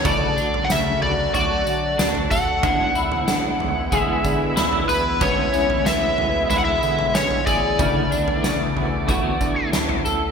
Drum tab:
TB |x-x-x---x-x-x-x-|x-x-x---x-x-x-x-|x-x-x---x-x-x-x-|x-x-x---x-x-x-x-|
SD |----o-------o---|----o-------o---|----o-------o---|----o-------o---|
FT |o--o--o-o----o--|o--o--o-o----o--|o--o--o-o--o-o--|o--o--o-o----o--|
BD |o-------------o-|o-------o-o-----|o-------------o-|o-------o-o-----|